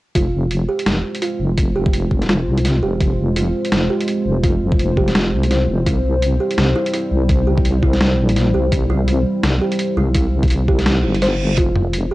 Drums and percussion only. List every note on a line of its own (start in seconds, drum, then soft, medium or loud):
0.15 kick loud
0.15 closed hi-hat medium
0.51 closed hi-hat medium
0.79 closed hi-hat soft
0.86 snare loud
0.86 closed hi-hat medium
1.15 closed hi-hat soft
1.22 closed hi-hat medium
1.58 kick loud
1.58 closed hi-hat medium
1.86 kick loud
1.93 closed hi-hat medium
2.11 kick medium
2.22 snare soft
2.22 closed hi-hat soft
2.27 snare soft
2.29 snare loud
2.29 closed hi-hat medium
2.33 snare soft
2.58 closed hi-hat soft
2.65 snare soft
2.65 closed hi-hat medium
3.01 kick loud
3.01 closed hi-hat medium
3.36 closed hi-hat medium
3.65 closed hi-hat soft
3.72 snare loud
3.72 closed hi-hat medium
4.00 closed hi-hat soft
4.08 closed hi-hat medium
4.44 kick loud
4.44 closed hi-hat medium
4.72 kick loud
4.79 closed hi-hat medium
4.97 kick medium
5.08 snare soft
5.08 closed hi-hat soft
5.15 snare loud
5.15 closed hi-hat medium
5.43 closed hi-hat soft
5.51 snare soft
5.51 closed hi-hat medium
5.86 kick loud
5.86 closed hi-hat medium
6.22 closed hi-hat medium
6.51 closed hi-hat soft
6.58 snare loud
6.58 closed hi-hat medium
6.86 closed hi-hat soft
6.94 closed hi-hat medium
7.29 kick loud
7.29 closed hi-hat medium
7.58 kick loud
7.65 closed hi-hat medium
7.83 kick medium
7.93 snare soft
7.93 closed hi-hat soft
8.01 snare loud
8.01 closed hi-hat medium
8.29 closed hi-hat soft
8.36 snare soft
8.36 closed hi-hat medium
8.72 kick loud
8.72 closed hi-hat medium
9.08 closed hi-hat medium
9.43 snare loud
9.43 closed hi-hat medium
9.72 closed hi-hat soft
9.79 closed hi-hat medium
10.15 kick loud
10.15 closed hi-hat medium
10.43 kick loud
10.43 closed hi-hat soft
10.48 closed hi-hat soft
10.50 closed hi-hat medium
10.54 closed hi-hat soft
10.68 kick medium
10.79 snare soft
10.79 closed hi-hat soft
10.86 snare loud
10.86 closed hi-hat medium
11.15 closed hi-hat soft
11.22 snare soft
11.22 closed hi-hat medium
11.58 kick loud
11.58 closed hi-hat medium
11.76 mid tom medium
11.93 closed hi-hat medium